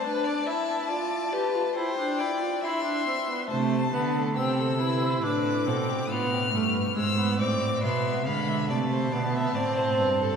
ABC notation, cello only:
X:1
M:4/4
L:1/8
Q:1/4=69
K:C
V:1 name="Cello" clef=bass
z8 | [K:Am] C, D, C,2 A,, B,, A,, G,, | ^G,, A,, B,, D, C, B,, A,, =G,, |]